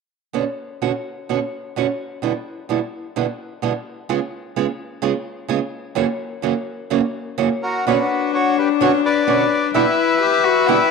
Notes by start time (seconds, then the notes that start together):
0.33 B2 D3 B3 C#4 F#4
0.82 B2 D3 B3 C#4 F#4
1.29 B2 D3 B3 C#4 F#4
1.76 B2 D3 B3 C#4 F#4
2.22 B2 D3 G3 B3 E4
2.69 B2 D3 G3 B3 E4
3.16 B2 D3 G3 B3 E4
3.62 B2 D3 G3 B3 E4
4.09 C#3 G#3 B3 F4 G#4
4.56 C#3 G#3 B3 F4 G#4
5.02 C#3 G#3 B3 F4 G#4
5.48 C#3 G#3 B3 F4 G#4
5.95 F#2 C#3 E3 A#3 C#4 F#4
6.42 F#2 C#3 E3 A#3 C#4 F#4
6.90 F#2 C#3 E3 A#3 C#4 F#4
7.38 F#2 C#3 E3 A#3 C#4 F#4
7.63 F#4 A#4
7.87 B2 D3 B3 C#4 D4 F#4 B4
8.34 F#4 C#5
8.58 G4 B4
8.81 B2 D3 B3 C#4 D4 F#4 C#5
9.05 B4 D5
9.27 B2 D3 B3 C#4 D4 F#4
9.74 B2 D3 G3 B3 E4 G4 B4 E5
10.21 G4
10.44 F#4
10.67 B2 D3 G3 B3 E4 G4